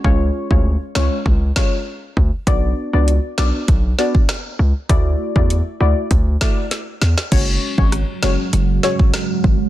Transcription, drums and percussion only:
0.04 kick loud
0.51 kick medium
0.95 cross-stick medium
0.95 snare loud
1.26 kick loud
1.56 kick medium
1.56 cross-stick medium
1.56 snare loud
2.17 kick medium
2.47 kick loud
2.47 closed hi-hat medium
3.08 closed hi-hat medium
3.38 cross-stick medium
3.38 snare loud
3.68 kick loud
3.68 closed hi-hat medium
3.99 snare medium
4.15 kick loud
4.29 cross-stick medium
4.29 snare loud
4.29 closed hi-hat medium
4.89 kick loud
4.89 closed hi-hat medium
5.36 kick medium
5.50 closed hi-hat medium
6.11 kick loud
6.11 closed hi-hat medium
6.41 kick medium
6.41 cross-stick medium
6.41 snare loud
6.71 snare medium
6.71 closed hi-hat medium
7.02 snare medium
7.18 snare medium
7.32 kick loud
7.32 closed hi-hat medium
7.32 crash medium
7.78 kick medium
7.92 cross-stick medium
7.92 closed hi-hat medium
8.23 cross-stick medium
8.23 snare loud
8.53 closed hi-hat medium
8.83 snare medium
8.99 kick loud
9.14 cross-stick medium
9.14 snare loud
9.14 closed hi-hat medium
9.44 kick medium

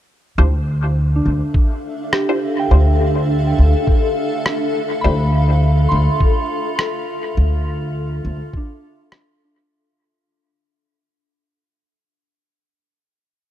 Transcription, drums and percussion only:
1.54 kick medium
2.13 cross-stick medium
3.87 kick loud
4.46 cross-stick medium
6.20 kick loud
6.79 cross-stick medium
8.53 kick loud
9.12 cross-stick medium

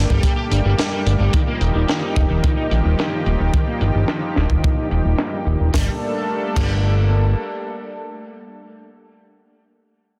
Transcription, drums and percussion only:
0.10 kick medium
0.23 kick loud
0.23 closed hi-hat loud
0.52 closed hi-hat medium
0.79 snare loud
0.79 closed hi-hat loud
1.07 closed hi-hat medium
1.33 kick loud
1.33 closed hi-hat medium
1.61 closed hi-hat medium
1.88 snare loud
1.88 closed hi-hat medium
2.16 kick loud
2.16 closed hi-hat medium
2.44 kick loud
2.44 closed hi-hat loud
2.71 closed hi-hat medium
2.99 snare loud
2.99 closed hi-hat medium
3.26 closed hi-hat medium
3.54 kick loud
3.54 closed hi-hat loud
3.81 closed hi-hat medium
4.08 snare loud
4.08 closed hi-hat medium
4.36 snare medium
4.36 closed hi-hat medium
4.50 kick medium
4.64 kick loud
4.64 closed hi-hat medium
4.91 closed hi-hat medium
5.18 snare loud
5.18 closed hi-hat loud
5.47 closed hi-hat medium
5.74 kick loud
5.74 snare medium
6.56 kick loud
6.56 crash medium

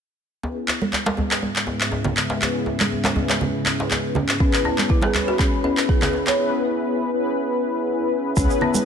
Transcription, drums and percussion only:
0.43 djembe tone medium
0.68 clap medium
0.68 djembe tone medium
0.82 high conga medium
0.93 clap medium
0.93 djembe tone medium
1.06 djembe slap loud
1.06 high conga loud
1.17 djembe tone medium
1.17 high conga medium
1.17 djembe bass loud
1.31 clap medium
1.31 djembe slap medium
1.42 high conga medium
1.42 djembe tone medium
1.56 clap medium
1.67 djembe tone medium
1.81 clap medium
1.92 djembe tone medium
2.04 djembe slap medium
2.04 low conga loud
2.04 djembe bass medium
2.17 clap medium
2.17 djembe tone medium
2.30 djembe slap medium
2.42 clap medium
2.42 djembe tone medium
2.66 djembe tone medium
2.80 clap medium
2.80 high conga loud
2.92 djembe tone medium
3.04 clap medium
3.04 djembe slap loud
3.04 high conga loud
3.16 djembe tone medium
3.16 high conga medium
3.16 djembe bass medium
3.29 clap medium
3.29 djembe slap medium
3.41 djembe tone medium
3.41 low conga medium
3.65 clap medium
3.65 djembe tone medium
3.80 djembe slap medium
3.91 clap medium
3.91 djembe tone medium
4.15 djembe tone loud
4.15 low conga loud
4.29 clap medium
4.40 kick loud
4.40 djembe tone medium
4.53 clap medium
4.65 djembe tone loud
4.78 clap medium
4.78 high conga medium
4.89 kick loud
4.89 djembe tone medium
5.02 djembe slap loud
5.02 high conga loud
5.14 clap medium
5.14 djembe tone medium
5.14 high conga medium
5.14 djembe bass medium
5.28 djembe slap medium
5.39 kick loud
5.39 clap medium
5.39 high conga medium
5.39 djembe tone medium
5.64 djembe tone loud
5.77 clap loud
5.89 kick loud
5.89 djembe tone medium
6.02 clap medium
6.02 djembe slap medium
6.02 low conga loud
6.02 djembe bass medium
6.13 djembe tone medium
6.27 clap loud
6.27 djembe slap medium
8.37 kick loud
8.37 shaker medium
8.50 djembe tone medium
8.50 shaker soft
8.61 low conga medium
8.74 high conga medium
8.74 shaker medium

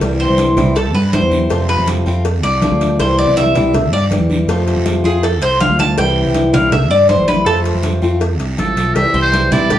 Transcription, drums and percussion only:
0.01 cowbell loud
0.01 high conga soft
0.01 long guiro medium
0.20 high conga soft
0.38 cowbell medium
0.38 high conga medium
0.38 short guiro medium
0.57 cowbell medium
0.57 high conga soft
0.57 low conga medium
0.57 short guiro medium
0.76 cowbell loud
0.76 high conga soft
0.76 long guiro medium
0.94 high conga soft
1.13 cowbell medium
1.13 high conga medium
1.13 short guiro medium
1.31 high conga medium
1.31 short guiro medium
1.50 cowbell loud
1.50 long guiro medium
1.69 cowbell medium
1.69 high conga soft
1.88 cowbell medium
1.88 high conga loud
1.88 short guiro medium
2.06 high conga soft
2.06 short guiro medium
2.25 cowbell loud
2.25 high conga soft
2.25 long guiro medium
2.44 cowbell medium
2.44 high conga soft
2.62 cowbell medium
2.62 high conga loud
2.62 short guiro medium
2.81 cowbell medium
2.81 high conga medium
2.81 short guiro medium
2.99 cowbell loud
2.99 high conga soft
2.99 long guiro medium
3.18 high conga soft
3.37 cowbell medium
3.37 high conga medium
3.37 short guiro medium
3.55 cowbell medium
3.55 high conga soft
3.55 low conga medium
3.55 short guiro medium
3.74 cowbell loud
3.74 high conga soft
3.74 low conga medium
3.74 long guiro medium
3.93 high conga soft
4.11 cowbell medium
4.11 high conga medium
4.11 short guiro medium
4.30 high conga medium
4.30 short guiro medium
4.48 cowbell loud
4.48 high conga soft
4.48 long guiro medium
4.67 cowbell medium
4.67 high conga soft
4.86 cowbell medium
4.86 high conga medium
4.86 short guiro medium
5.04 high conga soft
5.04 short guiro medium
5.23 cowbell loud
5.23 high conga soft
5.23 long guiro medium
5.42 cowbell medium
5.42 high conga soft
5.60 cowbell medium
5.60 high conga loud
5.60 short guiro medium
5.79 cowbell medium
5.79 high conga medium
5.79 short guiro medium
5.98 cowbell loud
5.98 high conga soft
5.98 long guiro medium
6.16 high conga soft
6.34 cowbell medium
6.34 high conga medium
6.34 short guiro medium
6.54 cowbell medium
6.54 high conga soft
6.54 low conga medium
6.54 short guiro medium
6.72 cowbell loud
6.72 high conga soft
6.72 low conga medium
6.72 long guiro medium
6.91 high conga soft
7.09 cowbell medium
7.09 high conga medium
7.09 short guiro medium
7.27 high conga medium
7.27 short guiro medium
7.46 cowbell loud
7.46 high conga soft
7.46 long guiro medium
7.65 cowbell medium
7.65 high conga soft
7.83 cowbell medium
7.83 high conga medium
7.83 short guiro medium
8.02 high conga soft
8.02 short guiro medium
8.21 cowbell loud
8.21 high conga soft
8.21 long guiro medium
8.39 cowbell medium
8.39 high conga soft
8.58 cowbell medium
8.58 high conga medium
8.58 short guiro medium
8.77 cowbell medium
8.77 short guiro medium
8.95 cowbell loud
8.95 high conga soft
8.95 long guiro medium
9.15 high conga soft
9.33 cowbell medium
9.33 high conga medium
9.33 short guiro medium
9.52 cowbell medium
9.52 high conga soft
9.52 low conga medium
9.52 short guiro medium
9.70 cowbell loud
9.70 high conga soft
9.70 low conga medium
9.70 long guiro medium

